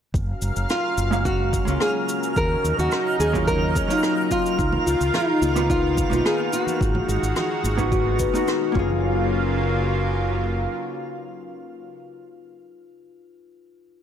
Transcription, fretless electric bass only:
0.14 0.32 F#1 medium
0.42 0.51 F#1 medium
0.57 0.65 F#1 medium
0.98 1.59 F#1 medium
1.68 1.76 C#2 medium
2.36 2.54 D#2 medium
2.64 2.73 D#2 medium
2.79 2.87 D#2 medium
3.20 3.81 D#2 medium
4.59 4.76 C#2 medium
4.87 4.95 C#2 medium
5.01 5.09 C#2 medium
5.42 6.03 C#2 medium
6.12 6.20 B1 medium
6.81 6.99 G#1 medium
7.09 7.18 G#1 medium
7.23 7.31 G#1 medium
7.64 8.25 G#1 medium
8.75 10.66 F#1 medium

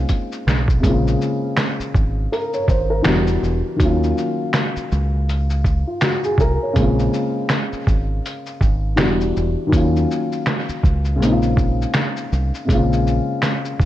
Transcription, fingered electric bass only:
0.47 0.79 B1 medium
0.84 1.16 A#1 loud
1.80 muted fingered electric bass stroke soft
1.95 2.27 G#1 medium
2.68 3.00 G#1 medium
3.06 3.38 E1 loud
3.43 3.61 E1 medium
3.80 4.12 D#2 medium
4.76 muted fingered electric bass stroke soft
4.92 5.83 C#2 loud
6.38 6.57 C2 medium
6.76 7.08 A#1 loud
7.73 muted fingered electric bass stroke soft
7.87 8.19 G#1 medium
8.62 9.00 G#1 medium
9.00 9.31 E1 loud
9.37 9.55 E1 medium
9.73 10.04 D#2 loud
10.69 muted fingered electric bass stroke soft
10.84 11.21 C#2 medium
11.21 11.84 A#1 loud
12.32 12.50 C2 medium
12.69 13.19 A#1 loud
13.80 13.85 G#1 medium

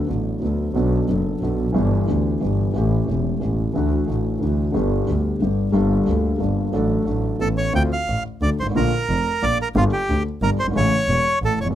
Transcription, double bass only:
0.09 0.40 A1 soft
0.43 0.74 D2 soft
0.76 1.07 B1 medium
1.09 1.40 F#1 soft
1.42 1.74 B1 soft
1.75 2.07 G1 medium
2.09 2.40 D2 soft
2.42 2.74 G1 soft
2.76 3.07 A1 medium
3.09 3.40 E1 soft
3.42 3.74 A1 soft
3.76 4.07 D2 medium
4.09 4.40 A1 soft
4.42 4.73 D2 soft
4.75 5.06 G1 medium
5.09 5.40 D2 soft
5.41 5.73 G1 soft
5.74 6.06 G1 medium
6.08 6.39 D2 soft
6.40 6.72 G1 soft
6.73 7.05 A1 medium
7.07 7.39 A1 soft
7.40 7.73 A1 soft
7.74 7.88 D2 medium
8.08 8.22 A1 soft
8.42 8.56 D2 soft
8.59 8.75 G#1 soft
8.76 8.90 A#1 medium
9.10 9.23 F1 soft
9.43 9.56 A#1 soft
9.76 9.90 G1 medium
10.09 10.23 D2 medium
10.42 10.56 G1 medium
10.58 10.74 G1 soft
10.75 10.89 A1 medium
11.09 11.23 E1 soft
11.42 11.56 A1 soft
11.59 11.75 F1 soft

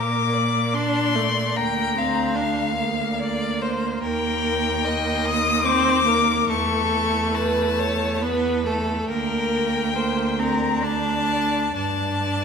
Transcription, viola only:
0.00 0.75 A#3 medium
0.74 1.17 D4 medium
1.15 1.57 A3 medium
1.56 1.96 A#3 medium
1.97 2.37 C4 medium
2.36 2.77 D4 medium
2.77 4.81 A#3 medium
4.84 5.66 A#3 medium
5.65 6.05 C4 medium
6.06 6.51 A#3 medium
6.50 8.23 A3 medium
8.22 8.66 B3 medium
8.66 9.11 A3 medium
9.10 9.95 A#3 medium
9.96 10.41 A#3 medium
10.39 10.84 C4 medium
10.83 11.75 D4 medium
11.76 12.45 D4 medium

